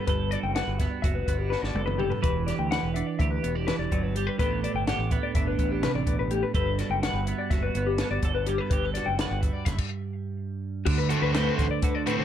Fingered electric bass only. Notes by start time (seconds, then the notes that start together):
0.08 G1
0.43 F#1
0.67 G1
1.04 F#1
1.28 G1
1.63 G1
1.74 F#1
2.24 E1
2.59 D2
2.83 E1
3.20 D2
3.44 E1
3.79 E1
3.92 G1
4.39 A1
4.74 G1
4.99 A1
5.35 G1
5.59 A1
5.94 A1
6.07 A1
6.54 G1
6.90 F#1
7.13 G1
7.51 F#1
7.75 G1
8.11 G1
8.23 G1
8.71 G1
9.06 F#1
9.31 G1
9.66 F#1
10.86 D2
11.22 D2
11.59 A1
11.83 D3
12.19 D3